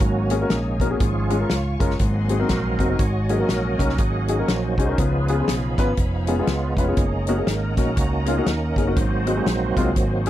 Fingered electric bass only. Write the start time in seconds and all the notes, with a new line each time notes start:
0.01 G#1
0.51 A#1
1.01 G#1
1.50 C#2
1.80 F#1
2.00 G#1
2.50 A#1
2.79 F#1
2.99 G#1
3.50 A#1
3.79 C2
3.99 G#1
4.49 A#1
4.78 C2
4.98 C#2
5.48 B1
5.78 G#1
5.97 F1
6.47 C#2
6.77 F1
6.97 F#1
7.47 G#1
7.77 A#1
7.97 C#2
8.47 D#2
8.76 F#1
8.97 G#1
9.46 A#1
9.77 C2
9.96 G#1